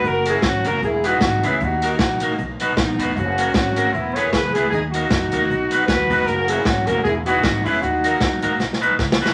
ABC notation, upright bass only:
X:1
M:4/4
L:1/8
Q:"Swing" 1/4=154
K:F#mix
V:1 name="Upright bass" clef=bass
F,,,2 G,,, F,,, E,,,2 G,,, C,, | D,,2 A,,,2 B,,,2 A,,, E,,, | F,,,2 G,,,2 E,,,2 F,,, C,, | D,,2 F,, D,, B,,,2 D,, E,,, |
F,,,2 G,,, F,,, E,,,2 G,,, E,,, | D,,2 E,, F,, B,,,2 C,, F,,, |]